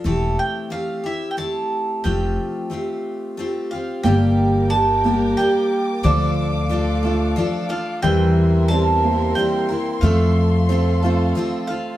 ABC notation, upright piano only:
X:1
M:3/4
L:1/8
Q:1/4=90
K:Gdor
V:1 name="Upright piano"
z6 | z6 | B,2 D [B,DG]3 | F,2 D [A,DF]3 |
E,2 C [B,CG]3 | A,2 C [A,CF]3 |]